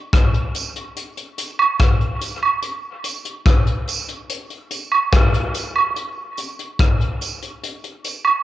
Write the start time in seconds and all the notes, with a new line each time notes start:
0.13 kick, cross-stick, closed hi-hat
0.34 closed hi-hat
0.54 closed hi-hat, tambourine
0.76 closed hi-hat
0.96 closed hi-hat
1.17 closed hi-hat
1.38 closed hi-hat, tambourine
1.59 high woodblock
1.79 kick, cross-stick, closed hi-hat
2.00 closed hi-hat
2.21 closed hi-hat, tambourine
2.43 high woodblock
2.62 closed hi-hat
3.04 closed hi-hat, tambourine
3.25 closed hi-hat
3.45 kick, cross-stick, closed hi-hat
3.67 closed hi-hat
3.87 closed hi-hat, tambourine
4.09 closed hi-hat
4.30 closed hi-hat
4.50 closed hi-hat
4.71 closed hi-hat, tambourine
4.92 high woodblock
5.12 kick, cross-stick, closed hi-hat
5.34 closed hi-hat
5.54 closed hi-hat, tambourine
5.76 high woodblock
5.96 closed hi-hat
6.37 closed hi-hat, tambourine
6.59 closed hi-hat
6.79 kick, cross-stick, closed hi-hat
7.00 closed hi-hat
7.21 closed hi-hat, tambourine
7.42 closed hi-hat
7.63 closed hi-hat
7.84 closed hi-hat
8.04 closed hi-hat, tambourine
8.25 high woodblock